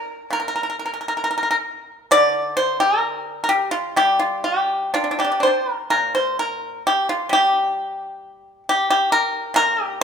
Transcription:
pipa
Already playing: A#4
0.30 A#2 A#4
0.40 A#4
0.48 A#4
0.56 A#4
0.63 A#4
0.70 A#4
0.79 A#4
0.86 A#4
0.94 A#4
1.01 A#4
1.08 A#4
1.17 A#4
1.24 A#4
1.31 A#4
1.38 A#4
1.43 A#4
1.51 A#4
2.11 D3 D5
2.57 C5
2.80 A#4
3.44 A#4
3.49 G4
3.71 F4
3.96 G3 G4
4.19 F4
4.44 G4
4.94 D4 F4
5.04 D4
5.11 D4
5.19 D4 G4
5.24 D4
5.32 D4
5.40 D4 C5
5.47 D4
5.72 A#4
5.90 A#2 A#4
6.15 C5
6.39 A#4
6.87 G4
7.09 F4
7.29 G3 G4
8.69 G4
8.90 G4
9.12 A#4
9.54 A#2 A#4
9.84 G4

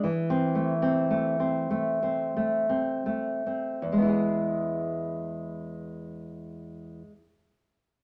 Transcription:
nylon-string guitar
0.04 E3
0.30 C4
0.55 A3
0.82 C4
1.10 A3
1.40 C4
1.70 A3
2.03 C4
2.37 A3
2.69 C4
3.06 A3
3.46 C4
3.82 E2
3.92 G#3
3.98 B3
4.02 E4
4.08 G#4

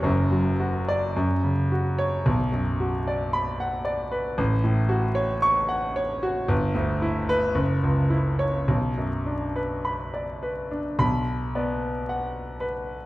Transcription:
grand piano
0.02 F#1 F#2
0.31 F#3
0.60 F#4
0.88 D5
1.16 F#2
1.43 C#3
1.72 F#4
1.99 C#5
2.26 B1
2.52 F#2
2.80 F#4
3.07 D5
3.33 B5
3.60 F#5
3.85 D5
4.12 B4
4.38 A1
4.64 A2
4.89 F#4
5.15 C#5
5.42 C#6
5.69 F#5
5.96 C#5
6.23 F#4
6.48 G1
6.74 D2
7.02 E4
7.29 B4
7.55 F#1
7.83 C#2
8.10 E4
8.39 C#5
8.68 B1
8.98 F#2
9.26 D4
9.56 B4
9.85 B5
10.14 D5
10.43 B4
10.71 D4
10.99 B1 B5
11.55 B3 D5
12.09 F#5
12.60 B4

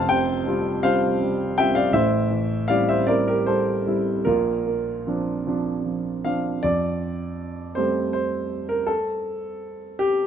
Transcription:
grand piano
Already playing: F1 F2 F5 A5
0.09 C3 C5 G5
0.47 G3 C4 F4
0.83 G3 C4 F4 C5 F5
1.23 G3
1.58 G3 C4 F4 E5 G5
1.75 D5 F5
1.93 A1 A2 C5 E5
2.31 E3
2.68 G3 C4 E4 D5 F5
2.89 C5 E5
3.07 G3 C4 E4 A#4 D5
3.28 G4 A#4
3.46 G3 A4 C5
3.87 G3 C4 E4
4.25 A#1 A#2 F4 A#4
4.66 A#3
5.07 F3 C4 D4
5.47 F3 C4 D4
5.85 F3
6.25 F3 C4 D4 F5
6.63 F2 D5
7.75 G3 A3 C4 C5
8.13 C5
8.69 A#4
8.87 A4
9.99 G4

